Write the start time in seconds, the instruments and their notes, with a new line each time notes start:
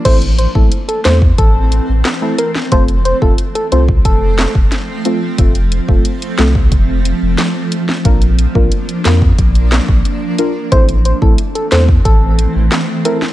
0.05 sub bass A1, ambient pad E3 A3 C4, synth stab A3 C4 E4 A4, soft synth lead C5, kick, closed hi-hat, crash
0.22 closed hi-hat
0.39 soft synth lead C5, closed hi-hat
0.55 sub bass A1, synth stab A3 C4 E4 A4, soft synth lead A4, kick
0.72 closed hi-hat
0.88 soft synth lead A4, closed hi-hat
1.05 sub bass E2, synth stab A3 C4 E4 A4, soft synth lead C5, snare, clap, closed hi-hat
1.22 kick
1.38 sub bass A1, soft synth lead A4, kick, closed hi-hat
1.72 closed hi-hat
1.89 sub bass A1
2.05 snare, clap, closed hi-hat
2.22 synth stab A3 C4 E4 A4
2.38 soft synth lead A#4, closed hi-hat
2.55 snare
2.71 sub bass F1, ambient pad F3 C4, synth stab A3 C4 F4 A4, soft synth lead C5, kick, closed hi-hat
2.88 closed hi-hat
3.05 soft synth lead C5, closed hi-hat
3.22 sub bass F1, synth stab A3 C4 F4 A4, soft synth lead A4, kick
3.38 closed hi-hat
3.55 soft synth lead A4, closed hi-hat
3.72 sub bass C2, synth stab A3 C4 F4 A4, soft synth lead C5, closed hi-hat
3.88 kick
4.05 sub bass F1, soft synth lead A4, kick, closed hi-hat
4.39 snare, clap, closed hi-hat
4.55 sub bass F1, kick
4.72 snare, closed hi-hat
5.05 synth stab A3 C4 F4 A4, closed hi-hat
5.38 sub bass F1, synth stab A3 C4 F4 A4, ambient pad A3, kick, closed hi-hat
5.55 closed hi-hat
5.72 closed hi-hat
5.88 sub bass F1, synth stab A3 C4 F4 A4, kick
6.05 closed hi-hat
6.22 closed hi-hat
6.38 sub bass C2, synth stab A3 C4 F4 A4, snare, clap, closed hi-hat
6.55 kick
6.72 sub bass F1, kick, closed hi-hat
7.05 closed hi-hat
7.22 sub bass F1
7.38 snare, clap, closed hi-hat
7.72 closed hi-hat
7.89 snare
8.05 sub bass A#1, synth stab A#3 D4 F4 A#4, ambient pad A#3 D4, kick, closed hi-hat
8.22 closed hi-hat
8.39 closed hi-hat
8.55 sub bass A#1, synth stab A#3 D4 F4 A#4, kick
8.72 closed hi-hat
8.89 closed hi-hat
9.05 sub bass F2, synth stab A#3 D4 F4 A#4, snare, clap, closed hi-hat
9.22 kick
9.38 sub bass A#1, kick, closed hi-hat
9.55 closed hi-hat
9.72 snare, clap, closed hi-hat
9.88 sub bass A#1, kick
10.05 closed hi-hat
10.38 synth stab A#3 D4 F4 A#4, closed hi-hat
10.72 sub bass A1, ambient pad E3 A3 C4, synth stab A3 C4 E4 A4, soft synth lead C5, kick, closed hi-hat
10.89 closed hi-hat
11.05 soft synth lead C5, closed hi-hat
11.22 sub bass A1, synth stab A3 C4 E4 A4, soft synth lead A4, kick
11.38 closed hi-hat
11.55 soft synth lead A4, closed hi-hat
11.71 sub bass E2, synth stab A3 C4 E4 A4, soft synth lead C5, snare, clap, closed hi-hat
11.89 kick
12.05 sub bass A1, soft synth lead A4, kick, closed hi-hat
12.39 closed hi-hat
12.55 sub bass A1
12.72 snare, clap, closed hi-hat
13.05 synth stab A3 C4 E4 A4, soft synth lead A#4, closed hi-hat
13.22 snare